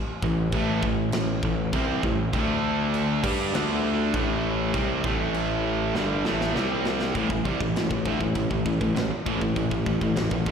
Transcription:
0.22 picked electric bass A1, distorted electric guitar A2 E3, kick
0.52 picked electric bass A1, distorted electric guitar A2 E3 A3, kick, china
0.83 picked electric bass A1, distorted electric guitar A2 E3, kick
1.12 picked electric bass A1, distorted electric guitar A2 E3, snare, china
1.43 picked electric bass A1, distorted electric guitar A2 E3, kick
1.73 picked electric bass C2, distorted electric guitar C3 G3 C4, kick, china
2.03 picked electric bass A1, distorted electric guitar A2 E3, kick
2.33 picked electric bass D2, distorted electric guitar D3 A3 D4, kick, china
2.94 china
3.24 picked electric bass G2, distorted electric guitar G3 D4 G4, kick, crash
3.53 picked electric bass D2, distorted electric guitar D3 A3 D4, snare, china
4.14 picked electric bass A1, distorted electric guitar A2 E3 A3, kick, china
4.74 picked electric bass C2, distorted electric guitar C3 G3 C4, kick, china
5.04 picked electric bass A1, distorted electric guitar A2 E3 A3, kick
5.34 china
5.94 picked electric bass G1, distorted electric guitar G2 D3 G3, snare
6.25 picked electric bass A1, distorted electric guitar A2 E3 A3, snare
6.41 snare
6.54 picked electric bass C2, distorted electric guitar C3 G3 C4, snare
6.85 snare
7.01 snare
7.15 picked electric bass A1, distorted electric guitar A2 E3, kick, china
7.30 picked electric bass A1, distorted electric guitar A2 E3, kick
7.45 picked electric bass C2, distorted electric guitar C3 G3, kick
7.61 picked electric bass A1, distorted electric guitar A2 E3, kick
7.76 picked electric bass A1, distorted electric guitar A2 E3, snare, china
7.91 picked electric bass A1, distorted electric guitar A2 E3, kick
8.05 picked electric bass D2, distorted electric guitar D3 A3, kick
8.21 picked electric bass A1, distorted electric guitar A2 E3, kick
8.35 picked electric bass A1, distorted electric guitar A2 E3, kick, china
8.51 picked electric bass A1, distorted electric guitar A2 E3, kick
8.66 picked electric bass A1, distorted electric guitar A2 E3, kick
8.81 picked electric bass A1, distorted electric guitar A2 E3, kick
8.96 picked electric bass A1, distorted electric guitar A2 E3, snare, china
9.11 muted distorted electric guitar stroke, muted picked electric bass stroke
9.26 picked electric bass A1, distorted electric guitar A2 E3, kick
9.41 picked electric bass A1, distorted electric guitar A2 E3, kick
9.56 picked electric bass A1, distorted electric guitar A2 E3, kick, china
9.71 picked electric bass A1, distorted electric guitar A2 E3, kick
9.86 picked electric bass A1, distorted electric guitar A2 E3, kick
10.01 picked electric bass A1, distorted electric guitar A2 E3, kick
10.16 picked electric bass A1, distorted electric guitar A2 E3, snare, china
10.31 picked electric bass A1, distorted electric guitar A2 E3, kick
10.46 picked electric bass G1, distorted electric guitar G2 D3, kick

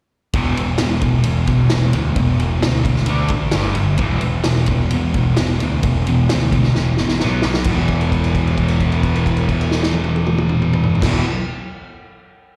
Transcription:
0.33 picked electric bass E1, distorted electric guitar E2 B2 E3, kick, ride
0.57 picked electric bass E1, distorted electric guitar E2 B2, ride
0.78 picked electric bass E1, distorted electric guitar E2 B2, snare, ride
1.01 picked electric bass E1, distorted electric guitar E2 B2, kick, ride
1.24 distorted electric guitar E2 B2, ride
1.28 picked electric bass E1
1.47 picked electric bass E1, distorted electric guitar E2 B2, kick, ride
1.70 picked electric bass E1, distorted electric guitar E2 B2, snare, ride
1.93 picked electric bass D2, distorted electric guitar E2 B2, ride
2.15 picked electric bass E1, distorted electric guitar E2 B2, kick, ride
2.39 picked electric bass E1, distorted electric guitar E2 B2, ride
2.61 picked electric bass D2, distorted electric guitar E2 B2, snare, ride
2.83 distorted electric guitar E2 B2, kick, ride
2.96 snare
3.06 picked electric bass D2, distorted electric guitar D3 A3, ride
3.10 distorted electric guitar D4
3.28 picked electric bass A1, distorted electric guitar D3 A3, kick, ride
3.51 picked electric bass G1, distorted electric guitar G2 D3 G3, snare, ride
3.75 picked electric bass G1, distorted electric guitar G2 D3, ride
3.98 picked electric bass E1, distorted electric guitar E2 B2 E3, kick, ride
4.21 picked electric bass E1, distorted electric guitar E2 B2, ride
4.44 picked electric bass E1, distorted electric guitar E2 B2, snare, ride
4.66 picked electric bass E1, distorted electric guitar E2 B2, kick, ride
4.90 picked electric bass E1, distorted electric guitar E2 B2, ride
5.14 picked electric bass E1, distorted electric guitar E2 B2, kick, ride
5.37 picked electric bass E1, distorted electric guitar E2 B2, snare, ride
5.60 picked electric bass D2, distorted electric guitar E2 B2, ride
5.83 picked electric bass E1, distorted electric guitar E2 B2, kick, ride
6.07 picked electric bass E1, distorted electric guitar E2 B2, ride
6.29 picked electric bass D2, distorted electric guitar E2 B2, snare, ride
6.52 distorted electric guitar E2 B2, kick, ride
6.63 snare
6.75 picked electric bass E1, distorted electric guitar E2 B2, snare
6.97 picked electric bass A1, distorted electric guitar E2 B2, snare
7.08 snare
7.20 picked electric bass B1, distorted electric guitar B2 F#3 B3, snare
7.42 picked electric bass B1, distorted electric guitar B2 F#3, snare
7.54 snare
7.64 picked electric bass E1, distorted electric guitar E2, kick, crash
7.68 distorted electric guitar B2 E3
7.88 kick, crash
8.01 crash
8.12 kick, crash
8.24 crash
8.35 kick, crash
8.47 crash
8.58 kick, crash
8.68 crash
8.80 kick, crash
8.92 crash
9.03 kick, crash
9.15 crash
9.26 kick, crash
9.37 crash
9.49 kick, crash
9.61 crash
9.71 snare
9.83 snare
9.94 high tom
10.04 high tom
10.16 high tom
10.26 mid tom
10.38 mid tom
10.49 mid tom
10.62 mid tom
10.73 mid tom
10.83 floor tom
10.95 floor tom
11.00 picked electric bass E1, distorted electric guitar E2 B2, kick, snare, crash
11.05 distorted electric guitar E3

